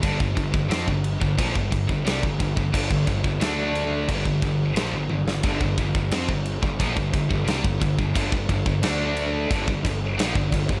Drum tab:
CC |x-x-x-x-x-x-x-x-|x-x-x-x-x-x-x---|x-x-x-x-x-x-x-x-|x-x-x-x-x-x-x-x-|
SD |----o-------o---|----o-------o--o|----o-------o---|----o-------o---|
T1 |----------------|--------------o-|----------------|----------------|
BD |oooo-o-ooooo-ooo|oooo----ooo-----|oooo-o-ooooo-ooo|oooo----ooo--ooo|